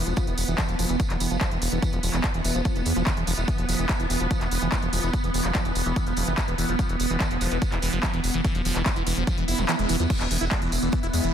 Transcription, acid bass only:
0.07 0.14 F3 medium
0.17 0.27 F3 medium
0.27 0.34 E3 medium
0.48 0.55 E3 medium
0.58 0.68 E3 medium
0.69 0.76 F3 medium
0.79 0.89 F3 medium
0.89 0.96 E3 medium
1.10 1.17 E3 medium
1.20 1.30 E3 medium
1.31 1.38 F3 medium
1.41 1.51 F3 medium
1.51 1.58 E3 medium
1.72 1.79 E3 medium
1.82 1.92 E3 medium
1.93 2.00 F3 medium
2.03 2.13 F3 medium
2.14 2.21 E3 medium
2.34 2.41 E3 medium
2.45 2.54 E3 medium
2.55 2.62 F3 medium
2.65 2.75 F3 medium
2.76 2.83 E3 medium
2.96 3.03 F3 loud
3.07 3.14 D3 medium
3.17 3.24 E3 medium
3.27 3.32 F3 medium
3.38 3.42 E4 medium
3.48 3.58 E3 medium
3.58 3.65 F3 medium
3.69 3.78 F3 medium
3.79 3.86 E3 medium
4.00 4.07 E3 medium
4.10 4.20 E3 medium
4.20 4.27 F3 medium
4.31 4.41 F3 medium
4.41 4.48 E3 medium
4.62 4.69 E3 medium
4.72 4.82 E3 medium
4.82 4.89 F3 medium
4.93 5.03 F3 medium
5.03 5.10 E3 medium
5.24 5.31 E3 medium
5.34 5.44 E3 medium
5.45 5.52 F3 medium
5.55 5.65 F3 medium
5.65 5.72 E3 medium
5.86 5.93 E3 medium
5.96 6.06 E3 medium
6.07 6.14 F3 medium
6.17 6.27 F3 medium
6.27 6.34 E3 medium
6.48 6.55 E3 medium
6.58 6.68 E3 medium
6.69 6.76 F3 medium
6.79 6.89 F3 medium
6.89 6.96 E3 medium
7.10 7.17 E3 medium
7.20 7.30 E3 medium
7.31 7.38 F3 medium
7.41 7.51 F3 medium
7.51 7.58 E3 medium
7.72 7.79 E3 medium
7.83 7.92 E3 medium
7.93 8.00 F3 medium
8.13 8.21 E3 medium
8.34 8.41 E3 medium
8.45 8.54 E3 medium
8.55 8.62 F3 medium
8.65 8.75 F3 medium
8.76 8.83 E3 medium
8.96 9.03 E3 medium
9.07 9.16 E3 medium
9.17 9.24 F3 medium
9.27 9.37 F3 medium
9.38 9.45 E3 medium
9.48 9.60 E4 medium
9.58 9.65 E3 medium
9.69 9.76 E3 loud
9.79 9.89 G#3 medium
9.89 9.96 E3 loud
10.00 10.04 F3 medium
10.20 10.27 E3 medium
10.31 10.38 E3 medium
10.41 10.45 E4 loud
10.51 10.61 G#3 medium
10.62 10.72 E3 medium
10.82 10.89 E3 medium
10.93 11.00 E3 medium
11.03 11.07 E4 loud
11.14 11.23 G#3 medium
11.24 11.34 E3 medium

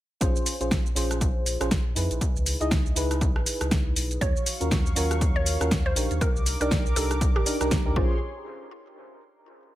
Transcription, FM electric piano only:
0.21 0.55 C#4 loud
0.21 0.55 F4 medium
0.21 0.55 G#4 medium
0.21 0.55 C5 loud
0.60 0.88 C#4 medium
0.60 0.88 F4 medium
0.60 0.88 G#4 medium
0.60 0.88 C5 medium
0.95 1.57 C#4 loud
0.95 1.57 F4 medium
0.95 1.57 G#4 medium
0.95 1.58 C5 loud
1.60 1.77 C#4 medium
1.60 1.77 F4 medium
1.60 1.77 G#4 medium
1.60 1.77 C5 loud
1.95 2.57 D#4 medium
1.95 2.57 E4 medium
1.95 2.57 G#4 medium
1.95 2.58 B4 medium
2.60 2.94 D#4 medium
2.60 2.94 E4 medium
2.60 2.94 G#4 medium
2.60 2.94 D#5 loud
2.96 4.20 D#4 loud
2.96 4.20 E4 medium
2.96 4.20 G#4 medium
2.96 4.20 B4 loud
4.60 4.88 C#4 medium
4.60 4.88 F4 medium
4.60 4.88 F#4 medium
4.60 4.88 A#4 medium
4.95 5.57 C#4 loud
4.95 5.57 F4 medium
4.95 5.57 F#4 medium
4.95 5.58 A#4 loud
5.60 5.77 C#4 medium
5.60 5.77 F4 medium
5.60 5.77 F#4 medium
5.60 5.77 A#4 loud
5.95 6.57 D4 medium
5.95 6.57 D#4 medium
5.95 6.57 G4 medium
5.95 6.58 A#4 medium
6.60 6.94 D4 medium
6.60 6.94 D#4 medium
6.60 6.94 G4 medium
6.60 6.94 D5 loud
6.96 7.44 D4 medium
6.96 7.44 D#4 medium
6.96 7.44 G4 medium
6.96 7.44 A#4 loud
7.46 7.57 D4 loud
7.46 7.57 D#4 medium
7.46 7.57 G4 medium
7.46 7.57 A#4 loud
7.60 7.82 D4 loud
7.60 7.82 D#4 medium
7.60 7.82 G4 medium
7.60 7.82 A#4 loud
7.85 7.94 D4 loud
7.85 7.95 D#4 medium
7.85 7.95 G4 medium
7.85 7.95 A#4 loud
7.95 8.15 C#4 medium
7.95 8.15 F4 medium
7.95 8.16 G#4 medium
7.95 8.16 C5 medium

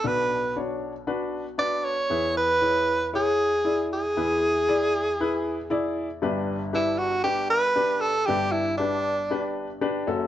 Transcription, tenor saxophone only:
0.07 0.57 B4 loud
1.59 1.86 D5 loud
1.84 2.36 C#5 loud
2.37 3.10 B4 loud
3.16 3.88 G#4 medium
3.93 5.94 G#4 medium
6.75 7.00 E4 medium
6.98 7.23 F#4 medium
7.24 7.48 G4 loud
7.50 8.02 B4 loud
8.00 8.28 A4 loud
8.26 8.54 G4 loud
8.52 8.77 E4 medium
8.78 9.52 D4 medium

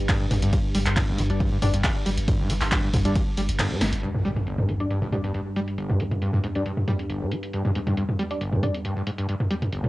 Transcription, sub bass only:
0.31 0.42 G1 loud
0.42 0.53 G1 medium
0.75 0.86 G1 loud
0.86 0.96 G1 medium
1.18 1.29 G1 loud
1.30 1.40 G1 medium
1.62 1.73 G1 loud
1.74 1.84 G1 medium
2.06 2.17 G1 loud
2.18 2.28 G1 medium
2.50 2.61 G1 loud
2.61 2.72 G1 medium
2.94 3.05 G1 loud
3.05 3.15 G1 medium
3.37 3.48 G1 loud
3.49 3.59 G1 medium
3.81 3.92 G1 loud
3.93 4.03 G1 medium

